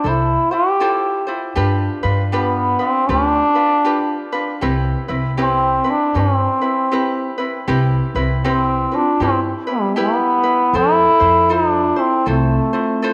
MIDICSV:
0, 0, Header, 1, 5, 480
1, 0, Start_track
1, 0, Key_signature, 0, "major"
1, 0, Tempo, 764331
1, 985, Time_signature, 4, 2, 24, 8
1, 8248, End_track
2, 0, Start_track
2, 0, Title_t, "Ukulele"
2, 0, Program_c, 0, 24
2, 24, Note_on_c, 0, 69, 49
2, 30, Note_on_c, 0, 64, 49
2, 38, Note_on_c, 0, 72, 59
2, 313, Note_off_c, 0, 72, 0
2, 320, Note_off_c, 0, 69, 0
2, 321, Note_on_c, 0, 72, 46
2, 323, Note_off_c, 0, 64, 0
2, 329, Note_on_c, 0, 65, 42
2, 335, Note_on_c, 0, 64, 36
2, 499, Note_off_c, 0, 64, 0
2, 503, Note_off_c, 0, 65, 0
2, 504, Note_off_c, 0, 72, 0
2, 504, Note_on_c, 0, 69, 70
2, 507, Note_on_c, 0, 64, 76
2, 511, Note_on_c, 0, 65, 65
2, 511, Note_on_c, 0, 72, 75
2, 789, Note_off_c, 0, 72, 0
2, 795, Note_off_c, 0, 65, 0
2, 796, Note_on_c, 0, 72, 47
2, 799, Note_off_c, 0, 64, 0
2, 800, Note_off_c, 0, 69, 0
2, 803, Note_on_c, 0, 65, 52
2, 807, Note_on_c, 0, 64, 44
2, 974, Note_off_c, 0, 72, 0
2, 975, Note_off_c, 0, 65, 0
2, 977, Note_on_c, 0, 67, 74
2, 980, Note_off_c, 0, 64, 0
2, 980, Note_on_c, 0, 62, 83
2, 983, Note_on_c, 0, 65, 81
2, 986, Note_on_c, 0, 71, 76
2, 1267, Note_off_c, 0, 71, 0
2, 1270, Note_off_c, 0, 65, 0
2, 1274, Note_on_c, 0, 71, 61
2, 1276, Note_off_c, 0, 67, 0
2, 1277, Note_off_c, 0, 62, 0
2, 1278, Note_on_c, 0, 65, 50
2, 1284, Note_on_c, 0, 62, 49
2, 1454, Note_off_c, 0, 62, 0
2, 1456, Note_off_c, 0, 65, 0
2, 1459, Note_on_c, 0, 67, 69
2, 1460, Note_off_c, 0, 71, 0
2, 1462, Note_on_c, 0, 62, 70
2, 1464, Note_on_c, 0, 65, 78
2, 1468, Note_on_c, 0, 71, 78
2, 1745, Note_off_c, 0, 71, 0
2, 1752, Note_on_c, 0, 71, 45
2, 1754, Note_off_c, 0, 65, 0
2, 1755, Note_off_c, 0, 62, 0
2, 1757, Note_off_c, 0, 67, 0
2, 1761, Note_on_c, 0, 65, 43
2, 1763, Note_on_c, 0, 62, 39
2, 1933, Note_off_c, 0, 62, 0
2, 1935, Note_off_c, 0, 65, 0
2, 1939, Note_on_c, 0, 67, 53
2, 1940, Note_off_c, 0, 71, 0
2, 1941, Note_on_c, 0, 62, 54
2, 1943, Note_on_c, 0, 65, 57
2, 1947, Note_on_c, 0, 71, 61
2, 2223, Note_off_c, 0, 71, 0
2, 2227, Note_off_c, 0, 65, 0
2, 2230, Note_on_c, 0, 71, 47
2, 2234, Note_off_c, 0, 62, 0
2, 2235, Note_on_c, 0, 65, 41
2, 2237, Note_off_c, 0, 67, 0
2, 2242, Note_on_c, 0, 62, 36
2, 2412, Note_off_c, 0, 62, 0
2, 2414, Note_off_c, 0, 65, 0
2, 2415, Note_on_c, 0, 67, 68
2, 2417, Note_off_c, 0, 71, 0
2, 2420, Note_on_c, 0, 62, 70
2, 2421, Note_on_c, 0, 65, 82
2, 2425, Note_on_c, 0, 71, 77
2, 2708, Note_off_c, 0, 71, 0
2, 2713, Note_off_c, 0, 65, 0
2, 2714, Note_off_c, 0, 67, 0
2, 2716, Note_on_c, 0, 71, 58
2, 2717, Note_off_c, 0, 62, 0
2, 2721, Note_on_c, 0, 65, 45
2, 2728, Note_on_c, 0, 62, 42
2, 2897, Note_off_c, 0, 71, 0
2, 2897, Note_on_c, 0, 67, 64
2, 2899, Note_off_c, 0, 65, 0
2, 2900, Note_off_c, 0, 62, 0
2, 2902, Note_on_c, 0, 60, 74
2, 2902, Note_on_c, 0, 64, 72
2, 2905, Note_on_c, 0, 71, 78
2, 3185, Note_off_c, 0, 71, 0
2, 3189, Note_off_c, 0, 64, 0
2, 3192, Note_on_c, 0, 71, 52
2, 3195, Note_off_c, 0, 67, 0
2, 3196, Note_off_c, 0, 60, 0
2, 3197, Note_on_c, 0, 64, 51
2, 3204, Note_on_c, 0, 60, 48
2, 3370, Note_off_c, 0, 60, 0
2, 3374, Note_off_c, 0, 64, 0
2, 3375, Note_on_c, 0, 67, 70
2, 3376, Note_off_c, 0, 71, 0
2, 3378, Note_on_c, 0, 60, 73
2, 3381, Note_on_c, 0, 64, 66
2, 3384, Note_on_c, 0, 71, 82
2, 3661, Note_off_c, 0, 71, 0
2, 3669, Note_off_c, 0, 64, 0
2, 3669, Note_on_c, 0, 71, 49
2, 3673, Note_off_c, 0, 60, 0
2, 3674, Note_off_c, 0, 67, 0
2, 3677, Note_on_c, 0, 64, 39
2, 3681, Note_on_c, 0, 60, 41
2, 3856, Note_off_c, 0, 60, 0
2, 3857, Note_on_c, 0, 67, 45
2, 3858, Note_off_c, 0, 71, 0
2, 3862, Note_off_c, 0, 64, 0
2, 3863, Note_on_c, 0, 60, 58
2, 3869, Note_on_c, 0, 64, 49
2, 3872, Note_on_c, 0, 71, 60
2, 4146, Note_off_c, 0, 71, 0
2, 4151, Note_off_c, 0, 64, 0
2, 4154, Note_on_c, 0, 71, 45
2, 4155, Note_off_c, 0, 67, 0
2, 4158, Note_off_c, 0, 60, 0
2, 4159, Note_on_c, 0, 64, 40
2, 4166, Note_on_c, 0, 60, 37
2, 4337, Note_off_c, 0, 60, 0
2, 4339, Note_off_c, 0, 64, 0
2, 4341, Note_off_c, 0, 71, 0
2, 4343, Note_on_c, 0, 67, 67
2, 4344, Note_on_c, 0, 60, 63
2, 4346, Note_on_c, 0, 64, 72
2, 4352, Note_on_c, 0, 71, 76
2, 4626, Note_off_c, 0, 71, 0
2, 4633, Note_on_c, 0, 71, 58
2, 4634, Note_off_c, 0, 64, 0
2, 4637, Note_off_c, 0, 60, 0
2, 4638, Note_off_c, 0, 67, 0
2, 4641, Note_on_c, 0, 64, 48
2, 4645, Note_on_c, 0, 60, 44
2, 4816, Note_off_c, 0, 60, 0
2, 4820, Note_off_c, 0, 71, 0
2, 4820, Note_on_c, 0, 67, 78
2, 4821, Note_off_c, 0, 64, 0
2, 4824, Note_on_c, 0, 60, 75
2, 4829, Note_on_c, 0, 64, 80
2, 4829, Note_on_c, 0, 71, 78
2, 5113, Note_off_c, 0, 71, 0
2, 5117, Note_off_c, 0, 67, 0
2, 5118, Note_off_c, 0, 60, 0
2, 5118, Note_off_c, 0, 64, 0
2, 5121, Note_on_c, 0, 71, 58
2, 5125, Note_on_c, 0, 64, 54
2, 5132, Note_on_c, 0, 60, 49
2, 5297, Note_off_c, 0, 60, 0
2, 5299, Note_off_c, 0, 64, 0
2, 5302, Note_off_c, 0, 71, 0
2, 5303, Note_on_c, 0, 67, 68
2, 5305, Note_on_c, 0, 60, 82
2, 5306, Note_on_c, 0, 64, 66
2, 5309, Note_on_c, 0, 71, 73
2, 5591, Note_off_c, 0, 71, 0
2, 5596, Note_off_c, 0, 67, 0
2, 5599, Note_off_c, 0, 60, 0
2, 5599, Note_on_c, 0, 71, 44
2, 5600, Note_off_c, 0, 64, 0
2, 5609, Note_on_c, 0, 60, 38
2, 5775, Note_off_c, 0, 71, 0
2, 5778, Note_off_c, 0, 60, 0
2, 5778, Note_on_c, 0, 67, 55
2, 5785, Note_on_c, 0, 60, 55
2, 5789, Note_on_c, 0, 64, 64
2, 5792, Note_on_c, 0, 71, 57
2, 6064, Note_off_c, 0, 71, 0
2, 6072, Note_off_c, 0, 64, 0
2, 6072, Note_on_c, 0, 71, 49
2, 6075, Note_off_c, 0, 67, 0
2, 6079, Note_off_c, 0, 60, 0
2, 6079, Note_on_c, 0, 64, 44
2, 6252, Note_off_c, 0, 64, 0
2, 6255, Note_on_c, 0, 67, 66
2, 6257, Note_off_c, 0, 71, 0
2, 6260, Note_on_c, 0, 64, 88
2, 6265, Note_on_c, 0, 71, 80
2, 6546, Note_off_c, 0, 71, 0
2, 6553, Note_on_c, 0, 71, 55
2, 6554, Note_off_c, 0, 67, 0
2, 6555, Note_off_c, 0, 64, 0
2, 6562, Note_on_c, 0, 64, 41
2, 6739, Note_off_c, 0, 64, 0
2, 6740, Note_off_c, 0, 71, 0
2, 6745, Note_on_c, 0, 69, 59
2, 6746, Note_on_c, 0, 64, 66
2, 6751, Note_on_c, 0, 72, 71
2, 7024, Note_off_c, 0, 72, 0
2, 7030, Note_off_c, 0, 69, 0
2, 7032, Note_on_c, 0, 72, 52
2, 7040, Note_off_c, 0, 64, 0
2, 7046, Note_on_c, 0, 64, 45
2, 7215, Note_off_c, 0, 64, 0
2, 7217, Note_on_c, 0, 69, 65
2, 7219, Note_off_c, 0, 72, 0
2, 7223, Note_on_c, 0, 65, 73
2, 7226, Note_on_c, 0, 72, 74
2, 7505, Note_off_c, 0, 72, 0
2, 7513, Note_on_c, 0, 72, 44
2, 7515, Note_off_c, 0, 69, 0
2, 7518, Note_off_c, 0, 65, 0
2, 7524, Note_on_c, 0, 64, 36
2, 7695, Note_off_c, 0, 64, 0
2, 7696, Note_off_c, 0, 72, 0
2, 7698, Note_on_c, 0, 69, 52
2, 7703, Note_on_c, 0, 64, 61
2, 7706, Note_on_c, 0, 65, 58
2, 7709, Note_on_c, 0, 72, 56
2, 7986, Note_off_c, 0, 72, 0
2, 7992, Note_off_c, 0, 65, 0
2, 7994, Note_on_c, 0, 72, 53
2, 7996, Note_off_c, 0, 69, 0
2, 7998, Note_off_c, 0, 64, 0
2, 7999, Note_on_c, 0, 65, 49
2, 8005, Note_on_c, 0, 64, 44
2, 8175, Note_off_c, 0, 64, 0
2, 8179, Note_off_c, 0, 65, 0
2, 8179, Note_on_c, 0, 69, 68
2, 8181, Note_off_c, 0, 72, 0
2, 8182, Note_on_c, 0, 64, 67
2, 8187, Note_on_c, 0, 65, 77
2, 8189, Note_on_c, 0, 72, 82
2, 8248, Note_off_c, 0, 64, 0
2, 8248, Note_off_c, 0, 65, 0
2, 8248, Note_off_c, 0, 69, 0
2, 8248, Note_off_c, 0, 72, 0
2, 8248, End_track
3, 0, Start_track
3, 0, Title_t, "Vibraphone"
3, 0, Program_c, 1, 11
3, 5333, Note_on_c, 1, 64, 64
3, 5593, Note_off_c, 1, 64, 0
3, 5605, Note_on_c, 1, 65, 65
3, 5786, Note_off_c, 1, 65, 0
3, 5796, Note_on_c, 1, 64, 67
3, 5926, Note_off_c, 1, 64, 0
3, 6086, Note_on_c, 1, 59, 64
3, 6254, Note_off_c, 1, 59, 0
3, 6261, Note_on_c, 1, 64, 78
3, 6742, Note_off_c, 1, 64, 0
3, 6745, Note_on_c, 1, 69, 75
3, 7219, Note_on_c, 1, 65, 72
3, 7224, Note_off_c, 1, 69, 0
3, 7511, Note_on_c, 1, 64, 78
3, 7516, Note_off_c, 1, 65, 0
3, 7693, Note_on_c, 1, 60, 56
3, 7699, Note_off_c, 1, 64, 0
3, 8248, Note_off_c, 1, 60, 0
3, 8248, End_track
4, 0, Start_track
4, 0, Title_t, "Trombone"
4, 0, Program_c, 2, 57
4, 50, Note_on_c, 2, 64, 82
4, 337, Note_on_c, 2, 67, 94
4, 347, Note_off_c, 2, 64, 0
4, 808, Note_off_c, 2, 67, 0
4, 1478, Note_on_c, 2, 59, 81
4, 1762, Note_on_c, 2, 60, 94
4, 1771, Note_off_c, 2, 59, 0
4, 1942, Note_on_c, 2, 61, 99
4, 1952, Note_off_c, 2, 60, 0
4, 2049, Note_off_c, 2, 61, 0
4, 2049, Note_on_c, 2, 62, 99
4, 2718, Note_off_c, 2, 62, 0
4, 3401, Note_on_c, 2, 60, 89
4, 3708, Note_on_c, 2, 62, 93
4, 3717, Note_off_c, 2, 60, 0
4, 3890, Note_on_c, 2, 60, 83
4, 3899, Note_off_c, 2, 62, 0
4, 4651, Note_off_c, 2, 60, 0
4, 5331, Note_on_c, 2, 60, 89
4, 5620, Note_on_c, 2, 62, 86
4, 5630, Note_off_c, 2, 60, 0
4, 5794, Note_off_c, 2, 62, 0
4, 5803, Note_on_c, 2, 60, 83
4, 5903, Note_off_c, 2, 60, 0
4, 6100, Note_on_c, 2, 55, 80
4, 6279, Note_on_c, 2, 59, 91
4, 6289, Note_off_c, 2, 55, 0
4, 6763, Note_on_c, 2, 64, 104
4, 6773, Note_off_c, 2, 59, 0
4, 7241, Note_on_c, 2, 63, 92
4, 7250, Note_off_c, 2, 64, 0
4, 7354, Note_off_c, 2, 63, 0
4, 7354, Note_on_c, 2, 62, 92
4, 7540, Note_on_c, 2, 60, 92
4, 7549, Note_off_c, 2, 62, 0
4, 7713, Note_off_c, 2, 60, 0
4, 7727, Note_on_c, 2, 57, 71
4, 8248, Note_off_c, 2, 57, 0
4, 8248, End_track
5, 0, Start_track
5, 0, Title_t, "Upright bass"
5, 0, Program_c, 3, 32
5, 27, Note_on_c, 3, 36, 78
5, 218, Note_off_c, 3, 36, 0
5, 983, Note_on_c, 3, 43, 93
5, 1175, Note_off_c, 3, 43, 0
5, 1281, Note_on_c, 3, 43, 86
5, 1712, Note_off_c, 3, 43, 0
5, 1942, Note_on_c, 3, 38, 95
5, 2134, Note_off_c, 3, 38, 0
5, 2904, Note_on_c, 3, 36, 87
5, 3096, Note_off_c, 3, 36, 0
5, 3199, Note_on_c, 3, 36, 79
5, 3631, Note_off_c, 3, 36, 0
5, 3863, Note_on_c, 3, 43, 85
5, 4055, Note_off_c, 3, 43, 0
5, 4822, Note_on_c, 3, 36, 94
5, 5014, Note_off_c, 3, 36, 0
5, 5116, Note_on_c, 3, 36, 79
5, 5549, Note_off_c, 3, 36, 0
5, 5779, Note_on_c, 3, 43, 81
5, 5972, Note_off_c, 3, 43, 0
5, 6741, Note_on_c, 3, 41, 85
5, 6933, Note_off_c, 3, 41, 0
5, 7039, Note_on_c, 3, 41, 90
5, 7470, Note_off_c, 3, 41, 0
5, 7704, Note_on_c, 3, 36, 91
5, 7895, Note_off_c, 3, 36, 0
5, 8248, End_track
0, 0, End_of_file